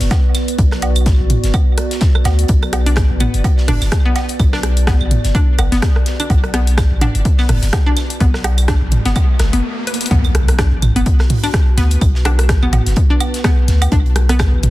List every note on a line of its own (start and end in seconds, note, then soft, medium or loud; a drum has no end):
0.00 0.09 F#1 medium
0.00 9.63 B3 medium
0.00 9.63 F#4 medium
0.00 9.63 B4 medium
0.00 9.63 D5 medium
0.00 snare soft
0.00 closed hi-hat soft
0.11 kick loud
0.11 snare loud
0.11 closed hi-hat soft
0.11 closed hi-hat medium
0.11 low woodblock medium
0.34 snare soft
0.34 closed hi-hat medium
0.34 claves medium
0.48 closed hi-hat soft
0.48 closed hi-hat medium
0.58 1.15 B1 medium
0.58 kick loud
0.58 closed hi-hat soft
0.58 closed hi-hat medium
0.71 cross-stick medium
0.71 snare soft
0.82 closed hi-hat medium
0.82 low woodblock medium
0.95 closed hi-hat soft
0.95 claves medium
1.06 kick loud
1.06 snare loud
1.06 closed hi-hat medium
1.06 closed hi-hat soft
1.20 1.38 A1 medium
1.30 closed hi-hat medium
1.30 mid tom medium
1.44 1.52 F#1 medium
1.44 snare soft
1.44 closed hi-hat soft
1.54 kick loud
1.54 closed hi-hat medium
1.54 closed hi-hat soft
1.54 claves medium
1.54 low woodblock medium
1.78 cross-stick medium
1.78 closed hi-hat medium
1.91 snare soft
1.91 closed hi-hat soft
2.01 kick loud
2.01 snare loud
2.01 closed hi-hat medium
2.01 closed hi-hat soft
2.15 cross-stick medium
2.15 claves medium
2.24 2.45 D2 loud
2.24 snare soft
2.24 closed hi-hat medium
2.24 low woodblock medium
2.39 closed hi-hat soft
2.48 3.06 B1 loud
2.48 kick loud
2.48 closed hi-hat medium
2.48 closed hi-hat soft
2.62 cross-stick medium
2.62 closed hi-hat soft
2.62 claves medium
2.73 cross-stick medium
2.73 closed hi-hat medium
2.73 low woodblock medium
2.86 2.89 D4 loud
2.86 closed hi-hat soft
2.96 kick loud
2.96 cross-stick medium
2.96 snare loud
2.96 closed hi-hat soft
2.96 closed hi-hat medium
3.10 3.28 A1 medium
3.20 3.26 B3 loud
3.20 closed hi-hat medium
3.20 mid tom medium
3.20 claves medium
3.34 3.42 F#1 medium
3.34 closed hi-hat soft
3.44 kick loud
3.44 closed hi-hat soft
3.44 closed hi-hat medium
3.44 low woodblock medium
3.58 snare soft
3.68 3.79 F#1 medium
3.68 3.72 D4 loud
3.68 cross-stick medium
3.68 closed hi-hat medium
3.68 mid tom medium
3.68 open hi-hat medium
3.81 3.90 F#1 loud
3.81 snare medium
3.81 closed hi-hat soft
3.81 claves medium
3.92 kick loud
3.92 cross-stick medium
3.92 snare loud
3.92 closed hi-hat medium
3.92 closed hi-hat soft
4.05 4.10 B3 loud
4.15 snare soft
4.15 closed hi-hat medium
4.15 low woodblock medium
4.29 closed hi-hat soft
4.29 closed hi-hat medium
4.39 4.96 B1 medium
4.39 kick loud
4.39 closed hi-hat soft
4.39 closed hi-hat medium
4.39 claves medium
4.53 4.56 D4 loud
4.53 cross-stick medium
4.53 snare soft
4.63 cross-stick medium
4.63 closed hi-hat medium
4.77 closed hi-hat soft
4.77 closed hi-hat medium
4.87 4.93 B3 loud
4.87 kick loud
4.87 cross-stick medium
4.87 snare loud
4.87 closed hi-hat soft
4.87 closed hi-hat medium
4.87 low woodblock medium
5.01 5.19 A1 medium
5.01 claves medium
5.11 closed hi-hat medium
5.11 mid tom medium
5.24 5.33 F#1 medium
5.24 snare soft
5.24 closed hi-hat medium
5.35 5.38 D4 loud
5.35 kick loud
5.35 closed hi-hat medium
5.35 closed hi-hat soft
5.58 5.69 F#1 medium
5.58 cross-stick medium
5.58 closed hi-hat medium
5.58 claves medium
5.58 low woodblock medium
5.72 5.80 F#1 medium
5.72 5.77 B3 loud
5.72 snare soft
5.72 closed hi-hat medium
5.82 kick loud
5.82 cross-stick medium
5.82 snare loud
5.82 closed hi-hat medium
5.82 closed hi-hat soft
5.96 cross-stick medium
6.06 snare soft
6.06 closed hi-hat medium
6.20 6.22 D4 loud
6.20 closed hi-hat medium
6.20 closed hi-hat soft
6.20 claves medium
6.30 6.87 B1 medium
6.30 kick loud
6.30 closed hi-hat soft
6.30 closed hi-hat medium
6.30 riser medium
6.30 low woodblock medium
6.44 cross-stick medium
6.44 closed hi-hat soft
6.54 6.60 B3 loud
6.54 cross-stick medium
6.54 closed hi-hat medium
6.67 closed hi-hat medium
6.78 kick loud
6.78 cross-stick medium
6.78 snare loud
6.78 closed hi-hat soft
6.78 closed hi-hat medium
6.78 claves medium
6.91 7.09 A1 medium
7.01 7.05 D4 loud
7.01 closed hi-hat medium
7.01 mid tom medium
7.01 low woodblock medium
7.15 7.23 F#1 medium
7.15 closed hi-hat soft
7.25 kick loud
7.25 closed hi-hat medium
7.25 closed hi-hat soft
7.38 7.43 B3 loud
7.38 snare soft
7.38 claves medium
7.49 7.60 F#1 medium
7.49 cross-stick medium
7.49 closed hi-hat medium
7.49 mid tom medium
7.49 open hi-hat medium
7.62 7.71 F#1 loud
7.62 snare medium
7.62 closed hi-hat soft
7.73 kick loud
7.73 cross-stick medium
7.73 snare loud
7.73 closed hi-hat medium
7.73 closed hi-hat soft
7.73 low woodblock medium
7.86 7.89 D4 loud
7.97 snare soft
7.97 closed hi-hat medium
7.97 claves medium
8.10 closed hi-hat soft
8.10 closed hi-hat medium
8.20 8.77 B1 medium
8.20 8.26 B3 loud
8.20 kick loud
8.20 closed hi-hat soft
8.20 closed hi-hat medium
8.34 cross-stick medium
8.34 snare soft
8.44 cross-stick medium
8.44 closed hi-hat medium
8.44 low woodblock medium
8.58 closed hi-hat soft
8.58 closed hi-hat medium
8.58 claves medium
8.68 8.72 D4 loud
8.68 kick loud
8.68 cross-stick loud
8.68 snare loud
8.68 closed hi-hat medium
8.68 closed hi-hat soft
8.82 9.00 A1 medium
8.91 closed hi-hat medium
8.91 mid tom medium
9.05 9.14 F#1 medium
9.05 9.10 B3 loud
9.05 snare soft
9.05 closed hi-hat soft
9.16 kick loud
9.16 closed hi-hat soft
9.16 closed hi-hat medium
9.16 claves medium
9.16 low woodblock medium
9.39 9.50 F#1 medium
9.39 cross-stick medium
9.39 snare loud
9.39 closed hi-hat medium
9.53 9.61 F#1 medium
9.53 9.60 B3 medium
9.53 closed hi-hat medium
9.87 9.91 B4 medium
9.87 closed hi-hat medium
9.94 closed hi-hat medium
10.01 closed hi-hat medium
10.06 closed hi-hat medium
10.11 10.68 B1 medium
10.11 10.17 B3 loud
10.11 14.70 B3 medium
10.11 kick loud
10.11 closed hi-hat soft
10.11 closed hi-hat medium
10.11 impact medium
10.24 closed hi-hat soft
10.24 claves medium
10.35 cross-stick medium
10.35 closed hi-hat medium
10.48 14.70 F#4 medium
10.48 cross-stick medium
10.48 closed hi-hat medium
10.59 10.62 D4 loud
10.59 kick loud
10.59 cross-stick loud
10.59 snare loud
10.59 closed hi-hat soft
10.59 closed hi-hat medium
10.72 10.90 A1 medium
10.82 closed hi-hat medium
10.82 mid tom medium
10.82 claves medium
10.96 11.04 F#1 medium
10.96 11.00 B3 loud
10.96 closed hi-hat medium
11.06 kick loud
11.06 closed hi-hat medium
11.06 closed hi-hat soft
11.19 cross-stick medium
11.19 snare soft
11.30 closed hi-hat medium
11.30 mid tom medium
11.30 open hi-hat medium
11.43 11.46 D4 loud
11.43 snare medium
11.43 closed hi-hat medium
11.43 claves medium
11.52 14.70 B4 medium
11.52 kick loud
11.52 cross-stick medium
11.52 snare loud
11.52 closed hi-hat soft
11.52 closed hi-hat medium
11.78 11.97 D2 loud
11.78 11.84 B3 loud
11.78 snare soft
11.78 closed hi-hat loud
11.78 closed hi-hat medium
11.91 closed hi-hat soft
11.91 closed hi-hat medium
12.01 12.58 B1 medium
12.01 kick loud
12.01 closed hi-hat soft
12.01 closed hi-hat medium
12.01 claves medium
12.15 snare soft
12.25 12.29 D4 loud
12.25 cross-stick medium
12.25 closed hi-hat medium
12.25 low woodblock soft
12.39 cross-stick medium
12.39 closed hi-hat soft
12.39 closed hi-hat medium
12.49 kick loud
12.49 cross-stick loud
12.49 snare loud
12.49 closed hi-hat soft
12.49 closed hi-hat medium
12.63 12.81 A1 medium
12.63 12.67 B3 loud
12.63 claves medium
12.73 closed hi-hat medium
12.73 mid tom medium
12.73 low woodblock medium
12.86 12.95 F#1 medium
12.86 snare soft
12.86 closed hi-hat medium
12.96 kick loud
12.96 closed hi-hat medium
12.96 closed hi-hat soft
13.10 13.13 D4 loud
13.20 closed hi-hat medium
13.20 claves medium
13.20 low woodblock medium
13.34 snare soft
13.34 closed hi-hat medium
13.44 13.50 B3 loud
13.44 kick loud
13.44 cross-stick loud
13.44 snare loud
13.44 closed hi-hat medium
13.44 closed hi-hat soft
13.68 13.88 D2 loud
13.68 snare medium
13.68 closed hi-hat medium
13.68 closed hi-hat loud
13.82 closed hi-hat medium
13.82 closed hi-hat soft
13.82 claves medium
13.82 low woodblock medium
13.92 14.49 B1 medium
13.92 13.95 D4 loud
13.92 kick loud
13.92 closed hi-hat medium
13.92 closed hi-hat soft
14.06 closed hi-hat soft
14.16 cross-stick medium
14.16 closed hi-hat medium
14.29 14.34 B3 loud
14.29 cross-stick medium
14.29 closed hi-hat medium
14.39 kick loud
14.39 cross-stick loud
14.39 snare loud
14.39 closed hi-hat soft
14.39 closed hi-hat medium
14.39 claves medium
14.53 14.70 A1 medium
14.63 closed hi-hat medium
14.63 closed hi-hat loud
14.63 mid tom medium